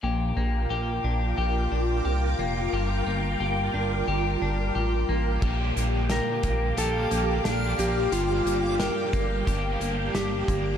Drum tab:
CC |--------|--------|x-------|--------|
HH |--------|--------|-xxxxxxx|xxxxxxxx|
SD |--------|--------|--o---o-|--o---o-|
BD |--------|--------|o--o----|---oo--o|